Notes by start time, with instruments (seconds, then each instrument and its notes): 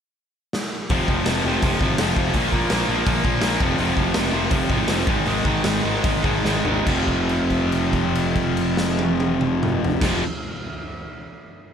0.53 snare
0.89 picked electric bass F1, distorted electric guitar F2 C3 F3, kick, open hi-hat
1.08 picked electric bass F1, distorted electric guitar F2 C3 F3, kick
1.26 picked electric bass F1, distorted electric guitar F2 C3 F3, snare, open hi-hat
1.45 picked electric bass F1, distorted electric guitar F2 C3 F3
1.62 picked electric bass F1, distorted electric guitar F2 C3 F3, kick, open hi-hat
1.81 picked electric bass G#1, distorted electric guitar F2 C3 F3, kick
1.98 picked electric bass F1, distorted electric guitar F2 C3 F3, snare, open hi-hat
2.16 picked electric bass F1, distorted electric guitar F2 C3 F3, kick
2.34 picked electric bass A#1, distorted electric guitar A#2 F3 A#3, kick, open hi-hat
2.52 picked electric bass A#1, distorted electric guitar A#2 F3 A#3, kick
2.70 picked electric bass A#1, distorted electric guitar A#2 F3 A#3, snare, open hi-hat
2.88 picked electric bass A#1, distorted electric guitar A#2 F3 A#3
3.06 picked electric bass A#1, distorted electric guitar A#2 F3 A#3, kick, open hi-hat
3.24 picked electric bass A#1, distorted electric guitar A#2 F3 A#3, kick
3.41 picked electric bass A#1, distorted electric guitar A#2 F3 A#3, snare, open hi-hat
3.60 picked electric bass F1, distorted electric guitar F2 C3 F3, kick
3.78 picked electric bass F1, distorted electric guitar F2 C3 F3, open hi-hat
3.96 picked electric bass F1, distorted electric guitar F2 C3 F3, kick
4.14 picked electric bass F1, distorted electric guitar F2 C3 F3, snare, open hi-hat
4.32 picked electric bass F1, distorted electric guitar F2 C3 F3
4.51 picked electric bass F1, distorted electric guitar F2 C3 F3, kick, open hi-hat
4.70 picked electric bass G#1, distorted electric guitar F2 C3 F3, kick
4.88 picked electric bass F1, distorted electric guitar F2 C3 F3, snare, open hi-hat
5.07 picked electric bass G#1, distorted electric guitar G#2 D#3 G#3, kick
5.26 picked electric bass G#1, distorted electric guitar G#2 D#3 G#3, open hi-hat
5.45 picked electric bass G#1, distorted electric guitar G#2 D#3 G#3, kick
5.64 picked electric bass G#1, distorted electric guitar G#2 D#3 G#3, snare, open hi-hat
5.83 picked electric bass G#1, distorted electric guitar G#2 D#3 G#3
6.03 picked electric bass G#1, distorted electric guitar G#2 D#3 G#3, kick, open hi-hat
6.23 picked electric bass G#1, distorted electric guitar G#2 D#3 G#3, kick
6.45 picked electric bass G#1, distorted electric guitar G#2 D#3 G#3, snare
6.65 picked electric bass G#1, distorted electric guitar G#2 D#3 G#3, floor tom
6.87 picked electric bass F1, distorted electric guitar F2 C3 F3, kick, crash
7.08 kick, crash
7.29 crash
7.50 kick, crash
7.72 crash
7.93 kick, crash
8.15 crash
8.35 kick, crash
8.57 crash
8.77 snare
8.99 high tom
9.20 high tom
9.41 mid tom
9.63 mid tom
9.84 floor tom
10.01 picked electric bass F1, distorted electric guitar F2 C3, kick, snare, crash
10.05 distorted electric guitar F3